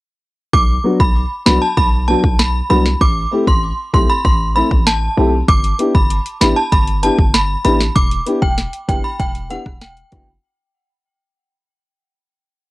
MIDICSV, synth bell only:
0, 0, Header, 1, 2, 480
1, 0, Start_track
1, 0, Tempo, 618557
1, 416, Time_signature, 4, 2, 24, 8
1, 9858, End_track
2, 0, Start_track
2, 0, Title_t, "Synth bell"
2, 0, Program_c, 0, 98
2, 414, Note_on_c, 0, 86, 104
2, 517, Note_off_c, 0, 86, 0
2, 776, Note_on_c, 0, 83, 80
2, 877, Note_off_c, 0, 83, 0
2, 1134, Note_on_c, 0, 83, 80
2, 1236, Note_off_c, 0, 83, 0
2, 1254, Note_on_c, 0, 81, 68
2, 1357, Note_off_c, 0, 81, 0
2, 1375, Note_on_c, 0, 83, 87
2, 1477, Note_off_c, 0, 83, 0
2, 1612, Note_on_c, 0, 81, 76
2, 1715, Note_off_c, 0, 81, 0
2, 1854, Note_on_c, 0, 83, 84
2, 1956, Note_off_c, 0, 83, 0
2, 2094, Note_on_c, 0, 83, 89
2, 2197, Note_off_c, 0, 83, 0
2, 2336, Note_on_c, 0, 86, 98
2, 2438, Note_off_c, 0, 86, 0
2, 2699, Note_on_c, 0, 84, 72
2, 2799, Note_off_c, 0, 84, 0
2, 3058, Note_on_c, 0, 84, 78
2, 3159, Note_off_c, 0, 84, 0
2, 3178, Note_on_c, 0, 83, 82
2, 3279, Note_off_c, 0, 83, 0
2, 3296, Note_on_c, 0, 84, 78
2, 3398, Note_off_c, 0, 84, 0
2, 3536, Note_on_c, 0, 83, 78
2, 3637, Note_off_c, 0, 83, 0
2, 3776, Note_on_c, 0, 81, 82
2, 4115, Note_off_c, 0, 81, 0
2, 4256, Note_on_c, 0, 86, 109
2, 4358, Note_off_c, 0, 86, 0
2, 4615, Note_on_c, 0, 83, 82
2, 4717, Note_off_c, 0, 83, 0
2, 4974, Note_on_c, 0, 83, 79
2, 5077, Note_off_c, 0, 83, 0
2, 5093, Note_on_c, 0, 81, 71
2, 5196, Note_off_c, 0, 81, 0
2, 5215, Note_on_c, 0, 83, 88
2, 5317, Note_off_c, 0, 83, 0
2, 5456, Note_on_c, 0, 81, 79
2, 5558, Note_off_c, 0, 81, 0
2, 5696, Note_on_c, 0, 83, 86
2, 5798, Note_off_c, 0, 83, 0
2, 5934, Note_on_c, 0, 83, 84
2, 6037, Note_off_c, 0, 83, 0
2, 6174, Note_on_c, 0, 86, 93
2, 6277, Note_off_c, 0, 86, 0
2, 6534, Note_on_c, 0, 79, 76
2, 6636, Note_off_c, 0, 79, 0
2, 6896, Note_on_c, 0, 79, 78
2, 6998, Note_off_c, 0, 79, 0
2, 7016, Note_on_c, 0, 83, 78
2, 7118, Note_off_c, 0, 83, 0
2, 7135, Note_on_c, 0, 79, 80
2, 7237, Note_off_c, 0, 79, 0
2, 7377, Note_on_c, 0, 78, 79
2, 7478, Note_off_c, 0, 78, 0
2, 7617, Note_on_c, 0, 79, 86
2, 7955, Note_off_c, 0, 79, 0
2, 9858, End_track
0, 0, End_of_file